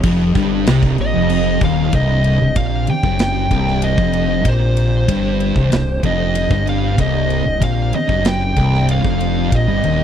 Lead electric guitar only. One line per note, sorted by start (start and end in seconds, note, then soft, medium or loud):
1.01 1.59 D#5 loud
1.65 1.95 F5 loud
1.95 2.56 D#5 loud
2.57 2.86 F5 loud
2.90 3.21 G5 medium
3.22 3.86 G5 loud
3.84 4.48 D#5 medium
4.49 6.01 C5 loud
6.06 6.64 D#5 loud
6.69 7.00 F5 loud
7.01 7.63 D#5 loud
7.64 7.92 F5 medium
7.95 8.27 D#5 medium
8.28 8.86 G5 loud
8.91 9.55 F5 loud
9.56 10.04 D#5 loud